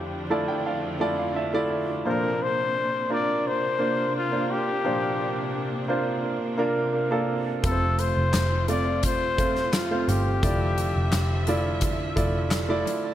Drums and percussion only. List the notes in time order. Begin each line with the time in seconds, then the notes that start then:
7.64 kick, closed hi-hat
7.99 closed hi-hat
8.33 snare, clap, closed hi-hat
8.68 closed hi-hat
9.03 kick, closed hi-hat
9.38 kick, closed hi-hat
9.56 snare
9.73 snare, clap, closed hi-hat
10.09 closed hi-hat
10.43 kick, closed hi-hat
10.78 closed hi-hat
11.12 snare, clap, closed hi-hat
11.47 closed hi-hat
11.81 kick, closed hi-hat
12.17 kick, closed hi-hat
12.51 snare, clap, closed hi-hat
12.87 closed hi-hat